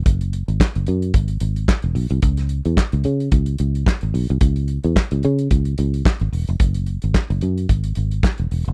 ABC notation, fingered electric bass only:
X:1
M:4/4
L:1/16
Q:"Swing 16ths" 1/4=110
K:F#dor
V:1 name="Fingered electric bass" clef=bass
F,,,3 G,,, z F,,, F,,2 G,,,2 G,,,2 z E,,, B,,, =C,, | C,,3 E,, z C,, C,2 C,,2 C,,2 z G,,, B,,, =C,, | C,,3 E,, z C,, C,2 C,,2 C,,2 z G,,, E,,, =F,,, | F,,,3 G,,, z F,,, F,,2 G,,,2 G,,,2 z E,,, E,,, =F,,, |]